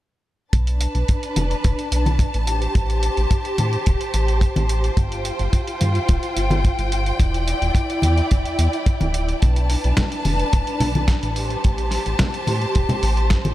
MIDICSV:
0, 0, Header, 1, 4, 480
1, 0, Start_track
1, 0, Key_signature, 0, "minor"
1, 0, Tempo, 555556
1, 459, Time_signature, 4, 2, 24, 8
1, 11702, End_track
2, 0, Start_track
2, 0, Title_t, "String section"
2, 0, Program_c, 0, 48
2, 458, Note_on_c, 0, 71, 68
2, 459, Note_on_c, 0, 81, 78
2, 460, Note_on_c, 0, 62, 72
2, 2122, Note_off_c, 0, 71, 0
2, 2123, Note_off_c, 0, 62, 0
2, 2139, Note_on_c, 0, 67, 73
2, 2140, Note_on_c, 0, 72, 69
2, 4265, Note_off_c, 0, 81, 0
2, 4278, Note_off_c, 0, 67, 0
2, 4298, Note_on_c, 0, 65, 75
2, 4300, Note_on_c, 0, 79, 83
2, 6185, Note_off_c, 0, 72, 0
2, 6200, Note_off_c, 0, 65, 0
2, 6217, Note_on_c, 0, 64, 75
2, 6218, Note_on_c, 0, 74, 66
2, 8105, Note_off_c, 0, 79, 0
2, 8119, Note_off_c, 0, 64, 0
2, 8119, Note_off_c, 0, 74, 0
2, 8137, Note_on_c, 0, 81, 84
2, 8138, Note_on_c, 0, 62, 73
2, 8138, Note_on_c, 0, 71, 68
2, 9801, Note_off_c, 0, 81, 0
2, 9802, Note_off_c, 0, 62, 0
2, 9802, Note_off_c, 0, 71, 0
2, 9816, Note_on_c, 0, 67, 70
2, 9816, Note_on_c, 0, 72, 70
2, 9816, Note_on_c, 0, 81, 85
2, 11702, Note_off_c, 0, 67, 0
2, 11702, Note_off_c, 0, 72, 0
2, 11702, Note_off_c, 0, 81, 0
2, 11702, End_track
3, 0, Start_track
3, 0, Title_t, "Analog synth bass"
3, 0, Program_c, 1, 38
3, 458, Note_on_c, 1, 35, 92
3, 753, Note_off_c, 1, 35, 0
3, 820, Note_on_c, 1, 35, 76
3, 897, Note_off_c, 1, 35, 0
3, 1177, Note_on_c, 1, 29, 78
3, 1336, Note_off_c, 1, 29, 0
3, 1423, Note_on_c, 1, 29, 76
3, 1501, Note_off_c, 1, 29, 0
3, 1657, Note_on_c, 1, 35, 85
3, 1952, Note_off_c, 1, 35, 0
3, 2023, Note_on_c, 1, 33, 73
3, 2314, Note_off_c, 1, 33, 0
3, 2377, Note_on_c, 1, 33, 89
3, 2672, Note_off_c, 1, 33, 0
3, 2742, Note_on_c, 1, 33, 73
3, 2818, Note_off_c, 1, 33, 0
3, 3098, Note_on_c, 1, 45, 76
3, 3257, Note_off_c, 1, 45, 0
3, 3343, Note_on_c, 1, 28, 75
3, 3422, Note_off_c, 1, 28, 0
3, 3461, Note_on_c, 1, 33, 41
3, 3555, Note_off_c, 1, 33, 0
3, 3577, Note_on_c, 1, 33, 84
3, 3872, Note_off_c, 1, 33, 0
3, 3943, Note_on_c, 1, 33, 76
3, 4234, Note_off_c, 1, 33, 0
3, 4294, Note_on_c, 1, 31, 90
3, 4591, Note_off_c, 1, 31, 0
3, 4661, Note_on_c, 1, 31, 75
3, 4737, Note_off_c, 1, 31, 0
3, 5019, Note_on_c, 1, 43, 78
3, 5177, Note_off_c, 1, 43, 0
3, 5262, Note_on_c, 1, 26, 80
3, 5341, Note_off_c, 1, 26, 0
3, 5499, Note_on_c, 1, 31, 84
3, 5793, Note_off_c, 1, 31, 0
3, 5863, Note_on_c, 1, 31, 78
3, 6154, Note_off_c, 1, 31, 0
3, 6216, Note_on_c, 1, 28, 92
3, 6512, Note_off_c, 1, 28, 0
3, 6582, Note_on_c, 1, 28, 78
3, 6658, Note_off_c, 1, 28, 0
3, 6938, Note_on_c, 1, 40, 75
3, 7097, Note_off_c, 1, 40, 0
3, 7184, Note_on_c, 1, 28, 81
3, 7299, Note_off_c, 1, 28, 0
3, 7304, Note_on_c, 1, 40, 42
3, 7396, Note_off_c, 1, 40, 0
3, 7419, Note_on_c, 1, 40, 87
3, 7500, Note_off_c, 1, 40, 0
3, 7782, Note_on_c, 1, 26, 80
3, 8073, Note_off_c, 1, 26, 0
3, 8143, Note_on_c, 1, 35, 91
3, 8435, Note_off_c, 1, 35, 0
3, 8505, Note_on_c, 1, 35, 79
3, 8579, Note_off_c, 1, 35, 0
3, 8858, Note_on_c, 1, 29, 76
3, 9017, Note_off_c, 1, 29, 0
3, 9099, Note_on_c, 1, 29, 78
3, 9179, Note_off_c, 1, 29, 0
3, 9338, Note_on_c, 1, 35, 89
3, 9633, Note_off_c, 1, 35, 0
3, 9702, Note_on_c, 1, 33, 75
3, 9993, Note_off_c, 1, 33, 0
3, 10064, Note_on_c, 1, 33, 94
3, 10356, Note_off_c, 1, 33, 0
3, 10422, Note_on_c, 1, 33, 81
3, 10498, Note_off_c, 1, 33, 0
3, 10777, Note_on_c, 1, 45, 74
3, 10936, Note_off_c, 1, 45, 0
3, 11022, Note_on_c, 1, 28, 82
3, 11101, Note_off_c, 1, 28, 0
3, 11142, Note_on_c, 1, 33, 43
3, 11235, Note_off_c, 1, 33, 0
3, 11257, Note_on_c, 1, 33, 88
3, 11552, Note_off_c, 1, 33, 0
3, 11621, Note_on_c, 1, 33, 82
3, 11702, Note_off_c, 1, 33, 0
3, 11702, End_track
4, 0, Start_track
4, 0, Title_t, "Drums"
4, 458, Note_on_c, 9, 42, 55
4, 459, Note_on_c, 9, 36, 110
4, 544, Note_off_c, 9, 42, 0
4, 545, Note_off_c, 9, 36, 0
4, 581, Note_on_c, 9, 42, 38
4, 667, Note_off_c, 9, 42, 0
4, 696, Note_on_c, 9, 42, 78
4, 783, Note_off_c, 9, 42, 0
4, 820, Note_on_c, 9, 42, 36
4, 906, Note_off_c, 9, 42, 0
4, 937, Note_on_c, 9, 42, 57
4, 941, Note_on_c, 9, 36, 94
4, 1023, Note_off_c, 9, 42, 0
4, 1028, Note_off_c, 9, 36, 0
4, 1062, Note_on_c, 9, 42, 37
4, 1149, Note_off_c, 9, 42, 0
4, 1177, Note_on_c, 9, 42, 80
4, 1181, Note_on_c, 9, 63, 72
4, 1264, Note_off_c, 9, 42, 0
4, 1268, Note_off_c, 9, 63, 0
4, 1304, Note_on_c, 9, 42, 33
4, 1390, Note_off_c, 9, 42, 0
4, 1419, Note_on_c, 9, 42, 66
4, 1423, Note_on_c, 9, 36, 110
4, 1506, Note_off_c, 9, 42, 0
4, 1509, Note_off_c, 9, 36, 0
4, 1544, Note_on_c, 9, 42, 35
4, 1631, Note_off_c, 9, 42, 0
4, 1659, Note_on_c, 9, 42, 86
4, 1745, Note_off_c, 9, 42, 0
4, 1781, Note_on_c, 9, 63, 74
4, 1783, Note_on_c, 9, 42, 36
4, 1867, Note_off_c, 9, 63, 0
4, 1870, Note_off_c, 9, 42, 0
4, 1893, Note_on_c, 9, 36, 91
4, 1899, Note_on_c, 9, 42, 55
4, 1980, Note_off_c, 9, 36, 0
4, 1986, Note_off_c, 9, 42, 0
4, 2023, Note_on_c, 9, 42, 36
4, 2109, Note_off_c, 9, 42, 0
4, 2137, Note_on_c, 9, 42, 84
4, 2223, Note_off_c, 9, 42, 0
4, 2262, Note_on_c, 9, 42, 35
4, 2348, Note_off_c, 9, 42, 0
4, 2377, Note_on_c, 9, 36, 104
4, 2378, Note_on_c, 9, 42, 57
4, 2464, Note_off_c, 9, 36, 0
4, 2465, Note_off_c, 9, 42, 0
4, 2504, Note_on_c, 9, 42, 36
4, 2590, Note_off_c, 9, 42, 0
4, 2616, Note_on_c, 9, 42, 82
4, 2703, Note_off_c, 9, 42, 0
4, 2742, Note_on_c, 9, 42, 36
4, 2828, Note_off_c, 9, 42, 0
4, 2857, Note_on_c, 9, 42, 60
4, 2858, Note_on_c, 9, 36, 98
4, 2944, Note_off_c, 9, 36, 0
4, 2944, Note_off_c, 9, 42, 0
4, 2981, Note_on_c, 9, 42, 33
4, 3067, Note_off_c, 9, 42, 0
4, 3095, Note_on_c, 9, 42, 83
4, 3096, Note_on_c, 9, 63, 70
4, 3182, Note_off_c, 9, 42, 0
4, 3182, Note_off_c, 9, 63, 0
4, 3220, Note_on_c, 9, 42, 35
4, 3307, Note_off_c, 9, 42, 0
4, 3337, Note_on_c, 9, 42, 61
4, 3343, Note_on_c, 9, 36, 109
4, 3424, Note_off_c, 9, 42, 0
4, 3429, Note_off_c, 9, 36, 0
4, 3462, Note_on_c, 9, 42, 36
4, 3549, Note_off_c, 9, 42, 0
4, 3575, Note_on_c, 9, 42, 84
4, 3661, Note_off_c, 9, 42, 0
4, 3701, Note_on_c, 9, 42, 34
4, 3787, Note_off_c, 9, 42, 0
4, 3812, Note_on_c, 9, 36, 94
4, 3817, Note_on_c, 9, 42, 61
4, 3899, Note_off_c, 9, 36, 0
4, 3903, Note_off_c, 9, 42, 0
4, 3940, Note_on_c, 9, 63, 76
4, 3943, Note_on_c, 9, 42, 37
4, 4027, Note_off_c, 9, 63, 0
4, 4029, Note_off_c, 9, 42, 0
4, 4055, Note_on_c, 9, 42, 78
4, 4142, Note_off_c, 9, 42, 0
4, 4181, Note_on_c, 9, 42, 36
4, 4268, Note_off_c, 9, 42, 0
4, 4295, Note_on_c, 9, 36, 114
4, 4298, Note_on_c, 9, 42, 53
4, 4381, Note_off_c, 9, 36, 0
4, 4385, Note_off_c, 9, 42, 0
4, 4423, Note_on_c, 9, 42, 36
4, 4509, Note_off_c, 9, 42, 0
4, 4536, Note_on_c, 9, 42, 77
4, 4622, Note_off_c, 9, 42, 0
4, 4660, Note_on_c, 9, 42, 34
4, 4746, Note_off_c, 9, 42, 0
4, 4778, Note_on_c, 9, 36, 95
4, 4778, Note_on_c, 9, 42, 59
4, 4864, Note_off_c, 9, 42, 0
4, 4865, Note_off_c, 9, 36, 0
4, 4903, Note_on_c, 9, 42, 34
4, 4989, Note_off_c, 9, 42, 0
4, 5018, Note_on_c, 9, 42, 76
4, 5020, Note_on_c, 9, 63, 75
4, 5104, Note_off_c, 9, 42, 0
4, 5107, Note_off_c, 9, 63, 0
4, 5142, Note_on_c, 9, 42, 33
4, 5228, Note_off_c, 9, 42, 0
4, 5258, Note_on_c, 9, 42, 59
4, 5262, Note_on_c, 9, 36, 115
4, 5344, Note_off_c, 9, 42, 0
4, 5348, Note_off_c, 9, 36, 0
4, 5382, Note_on_c, 9, 42, 34
4, 5468, Note_off_c, 9, 42, 0
4, 5500, Note_on_c, 9, 42, 78
4, 5586, Note_off_c, 9, 42, 0
4, 5620, Note_on_c, 9, 63, 84
4, 5625, Note_on_c, 9, 42, 34
4, 5707, Note_off_c, 9, 63, 0
4, 5711, Note_off_c, 9, 42, 0
4, 5742, Note_on_c, 9, 36, 96
4, 5742, Note_on_c, 9, 42, 53
4, 5828, Note_off_c, 9, 42, 0
4, 5829, Note_off_c, 9, 36, 0
4, 5864, Note_on_c, 9, 42, 33
4, 5951, Note_off_c, 9, 42, 0
4, 5980, Note_on_c, 9, 42, 79
4, 6066, Note_off_c, 9, 42, 0
4, 6103, Note_on_c, 9, 42, 35
4, 6189, Note_off_c, 9, 42, 0
4, 6217, Note_on_c, 9, 36, 103
4, 6221, Note_on_c, 9, 42, 56
4, 6303, Note_off_c, 9, 36, 0
4, 6307, Note_off_c, 9, 42, 0
4, 6345, Note_on_c, 9, 42, 34
4, 6431, Note_off_c, 9, 42, 0
4, 6459, Note_on_c, 9, 42, 75
4, 6546, Note_off_c, 9, 42, 0
4, 6584, Note_on_c, 9, 42, 35
4, 6670, Note_off_c, 9, 42, 0
4, 6693, Note_on_c, 9, 36, 92
4, 6700, Note_on_c, 9, 42, 53
4, 6780, Note_off_c, 9, 36, 0
4, 6786, Note_off_c, 9, 42, 0
4, 6824, Note_on_c, 9, 42, 32
4, 6910, Note_off_c, 9, 42, 0
4, 6931, Note_on_c, 9, 63, 69
4, 6940, Note_on_c, 9, 42, 78
4, 7017, Note_off_c, 9, 63, 0
4, 7027, Note_off_c, 9, 42, 0
4, 7063, Note_on_c, 9, 42, 33
4, 7150, Note_off_c, 9, 42, 0
4, 7179, Note_on_c, 9, 42, 57
4, 7184, Note_on_c, 9, 36, 97
4, 7266, Note_off_c, 9, 42, 0
4, 7271, Note_off_c, 9, 36, 0
4, 7305, Note_on_c, 9, 42, 33
4, 7391, Note_off_c, 9, 42, 0
4, 7420, Note_on_c, 9, 42, 82
4, 7506, Note_off_c, 9, 42, 0
4, 7545, Note_on_c, 9, 42, 33
4, 7632, Note_off_c, 9, 42, 0
4, 7658, Note_on_c, 9, 36, 103
4, 7660, Note_on_c, 9, 42, 56
4, 7745, Note_off_c, 9, 36, 0
4, 7746, Note_off_c, 9, 42, 0
4, 7782, Note_on_c, 9, 63, 77
4, 7784, Note_on_c, 9, 42, 32
4, 7868, Note_off_c, 9, 63, 0
4, 7870, Note_off_c, 9, 42, 0
4, 7898, Note_on_c, 9, 42, 76
4, 7984, Note_off_c, 9, 42, 0
4, 8023, Note_on_c, 9, 42, 34
4, 8109, Note_off_c, 9, 42, 0
4, 8139, Note_on_c, 9, 42, 53
4, 8144, Note_on_c, 9, 36, 103
4, 8226, Note_off_c, 9, 42, 0
4, 8230, Note_off_c, 9, 36, 0
4, 8263, Note_on_c, 9, 42, 34
4, 8350, Note_off_c, 9, 42, 0
4, 8378, Note_on_c, 9, 46, 94
4, 8464, Note_off_c, 9, 46, 0
4, 8504, Note_on_c, 9, 42, 35
4, 8590, Note_off_c, 9, 42, 0
4, 8613, Note_on_c, 9, 38, 98
4, 8617, Note_on_c, 9, 64, 87
4, 8618, Note_on_c, 9, 42, 58
4, 8623, Note_on_c, 9, 36, 93
4, 8699, Note_off_c, 9, 38, 0
4, 8703, Note_off_c, 9, 64, 0
4, 8704, Note_off_c, 9, 42, 0
4, 8709, Note_off_c, 9, 36, 0
4, 8742, Note_on_c, 9, 42, 34
4, 8829, Note_off_c, 9, 42, 0
4, 8856, Note_on_c, 9, 46, 79
4, 8858, Note_on_c, 9, 63, 73
4, 8942, Note_off_c, 9, 46, 0
4, 8945, Note_off_c, 9, 63, 0
4, 8981, Note_on_c, 9, 42, 33
4, 9068, Note_off_c, 9, 42, 0
4, 9097, Note_on_c, 9, 42, 60
4, 9100, Note_on_c, 9, 36, 110
4, 9183, Note_off_c, 9, 42, 0
4, 9186, Note_off_c, 9, 36, 0
4, 9220, Note_on_c, 9, 42, 33
4, 9307, Note_off_c, 9, 42, 0
4, 9334, Note_on_c, 9, 64, 64
4, 9336, Note_on_c, 9, 46, 98
4, 9420, Note_off_c, 9, 64, 0
4, 9422, Note_off_c, 9, 46, 0
4, 9462, Note_on_c, 9, 42, 32
4, 9463, Note_on_c, 9, 63, 80
4, 9548, Note_off_c, 9, 42, 0
4, 9550, Note_off_c, 9, 63, 0
4, 9571, Note_on_c, 9, 38, 99
4, 9573, Note_on_c, 9, 36, 108
4, 9576, Note_on_c, 9, 42, 53
4, 9657, Note_off_c, 9, 38, 0
4, 9659, Note_off_c, 9, 36, 0
4, 9662, Note_off_c, 9, 42, 0
4, 9701, Note_on_c, 9, 42, 34
4, 9788, Note_off_c, 9, 42, 0
4, 9816, Note_on_c, 9, 46, 81
4, 9902, Note_off_c, 9, 46, 0
4, 9940, Note_on_c, 9, 42, 35
4, 10026, Note_off_c, 9, 42, 0
4, 10058, Note_on_c, 9, 42, 59
4, 10063, Note_on_c, 9, 36, 104
4, 10145, Note_off_c, 9, 42, 0
4, 10150, Note_off_c, 9, 36, 0
4, 10179, Note_on_c, 9, 42, 35
4, 10265, Note_off_c, 9, 42, 0
4, 10290, Note_on_c, 9, 38, 31
4, 10295, Note_on_c, 9, 46, 89
4, 10377, Note_off_c, 9, 38, 0
4, 10382, Note_off_c, 9, 46, 0
4, 10419, Note_on_c, 9, 42, 37
4, 10506, Note_off_c, 9, 42, 0
4, 10532, Note_on_c, 9, 38, 105
4, 10537, Note_on_c, 9, 42, 59
4, 10539, Note_on_c, 9, 36, 96
4, 10541, Note_on_c, 9, 64, 87
4, 10618, Note_off_c, 9, 38, 0
4, 10623, Note_off_c, 9, 42, 0
4, 10626, Note_off_c, 9, 36, 0
4, 10627, Note_off_c, 9, 64, 0
4, 10662, Note_on_c, 9, 42, 35
4, 10749, Note_off_c, 9, 42, 0
4, 10774, Note_on_c, 9, 63, 68
4, 10778, Note_on_c, 9, 46, 79
4, 10861, Note_off_c, 9, 63, 0
4, 10865, Note_off_c, 9, 46, 0
4, 10900, Note_on_c, 9, 42, 33
4, 10986, Note_off_c, 9, 42, 0
4, 11016, Note_on_c, 9, 42, 62
4, 11022, Note_on_c, 9, 36, 92
4, 11102, Note_off_c, 9, 42, 0
4, 11108, Note_off_c, 9, 36, 0
4, 11137, Note_on_c, 9, 64, 72
4, 11142, Note_on_c, 9, 42, 34
4, 11224, Note_off_c, 9, 64, 0
4, 11228, Note_off_c, 9, 42, 0
4, 11256, Note_on_c, 9, 46, 95
4, 11343, Note_off_c, 9, 46, 0
4, 11380, Note_on_c, 9, 42, 34
4, 11467, Note_off_c, 9, 42, 0
4, 11492, Note_on_c, 9, 38, 99
4, 11497, Note_on_c, 9, 42, 59
4, 11499, Note_on_c, 9, 36, 92
4, 11579, Note_off_c, 9, 38, 0
4, 11584, Note_off_c, 9, 42, 0
4, 11586, Note_off_c, 9, 36, 0
4, 11620, Note_on_c, 9, 63, 74
4, 11621, Note_on_c, 9, 42, 37
4, 11702, Note_off_c, 9, 42, 0
4, 11702, Note_off_c, 9, 63, 0
4, 11702, End_track
0, 0, End_of_file